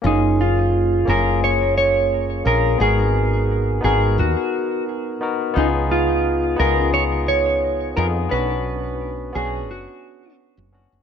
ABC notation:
X:1
M:4/4
L:1/16
Q:"Swing 16ths" 1/4=87
K:F#
V:1 name="Clean electric guitar"
D2 E4 A2 c2 c4 A2 | G6 G2 F4 z4 | D2 E4 A2 c2 c4 A2 | B6 G2 F4 z4 |]
V:2 name="Tine electric piano"
[A,CEG]6 [A,CEG]8 [A,CEG]2 | [B,DFA]6 [B,DFA]8 [B,DFA]2 | [B,DEG]6 [B,DEG]8 [B,DEG]2 | [B,C=DF]6 [B,CDF]8 [B,CDF]2 |]
V:3 name="Fretless electric bass" clef=bass
F,,,6 F,,,8 A,,,2 | G,,,6 G,,,2 D,, z6 z | C,,6 C,,8 E,,2 | B,,,6 B,,,2 F,,, z4 F,,,2 F,,, |]